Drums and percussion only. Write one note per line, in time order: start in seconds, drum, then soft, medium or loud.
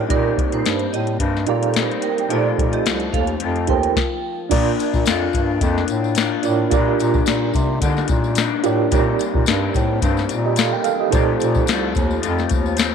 0.10 kick loud
0.10 closed hi-hat medium
0.38 kick medium
0.38 closed hi-hat medium
0.52 closed hi-hat soft
0.66 snare medium
0.66 closed hi-hat medium
0.79 closed hi-hat soft
0.94 closed hi-hat medium
1.07 closed hi-hat soft
1.20 kick medium
1.20 closed hi-hat medium
1.37 snare soft
1.47 closed hi-hat medium
1.63 closed hi-hat medium
1.74 snare loud
1.74 closed hi-hat medium
1.91 closed hi-hat soft
2.02 closed hi-hat medium
2.18 closed hi-hat soft
2.30 closed hi-hat medium
2.58 kick medium
2.58 closed hi-hat medium
2.73 closed hi-hat soft
2.86 snare loud
2.86 closed hi-hat medium
3.00 closed hi-hat soft
3.13 kick medium
3.13 closed hi-hat medium
3.27 closed hi-hat soft
3.40 closed hi-hat medium
3.56 closed hi-hat soft
3.67 kick medium
3.67 closed hi-hat medium
3.83 closed hi-hat medium
3.96 kick medium
3.96 snare medium
4.51 kick loud
4.51 closed hi-hat medium
4.51 crash medium
4.51 tambourine soft
4.79 closed hi-hat medium
4.79 tambourine soft
4.94 kick medium
4.94 tambourine soft
5.06 snare loud
5.06 closed hi-hat medium
5.06 tambourine medium
5.33 kick medium
5.33 closed hi-hat medium
5.33 tambourine soft
5.61 kick medium
5.61 closed hi-hat medium
5.61 tambourine soft
5.78 snare soft
5.88 closed hi-hat medium
5.88 tambourine soft
6.04 tambourine soft
6.15 snare loud
6.15 closed hi-hat medium
6.15 tambourine medium
6.43 closed hi-hat medium
6.43 tambourine soft
6.71 kick loud
6.71 closed hi-hat medium
6.71 tambourine medium
6.99 closed hi-hat medium
6.99 tambourine soft
7.14 kick medium
7.14 tambourine soft
7.26 snare loud
7.26 closed hi-hat medium
7.26 tambourine medium
7.54 kick medium
7.54 closed hi-hat medium
7.54 tambourine soft
7.81 kick medium
7.81 closed hi-hat loud
7.81 tambourine soft
7.97 snare soft
7.97 tambourine soft
8.08 kick medium
8.08 closed hi-hat medium
8.08 tambourine soft
8.24 tambourine soft
8.35 snare loud
8.35 closed hi-hat medium
8.35 tambourine medium
8.64 closed hi-hat medium
8.64 tambourine soft
8.91 kick loud
8.91 closed hi-hat loud
8.91 tambourine soft
9.19 closed hi-hat medium
9.19 tambourine soft
9.35 kick medium
9.46 snare loud
9.46 closed hi-hat medium
9.46 tambourine medium
9.74 kick medium
9.74 closed hi-hat medium
9.74 tambourine soft
10.02 kick medium
10.02 closed hi-hat medium
10.02 tambourine soft
10.17 snare soft
10.17 tambourine soft
10.29 closed hi-hat medium
10.29 tambourine soft
10.56 snare loud
10.56 closed hi-hat medium
10.56 tambourine medium
10.84 closed hi-hat medium
10.84 tambourine soft
11.12 kick loud
11.12 closed hi-hat loud
11.12 tambourine medium
11.40 closed hi-hat medium
11.40 tambourine soft
11.54 kick medium
11.54 tambourine soft
11.67 snare loud
11.67 closed hi-hat medium
11.67 tambourine medium
11.95 kick medium
11.95 closed hi-hat medium
11.95 tambourine soft
12.11 tambourine soft
12.23 closed hi-hat medium
12.23 tambourine soft
12.38 snare soft
12.38 tambourine soft
12.49 kick medium
12.49 closed hi-hat medium
12.49 tambourine soft
12.66 tambourine soft
12.77 snare loud
12.77 closed hi-hat medium
12.77 tambourine medium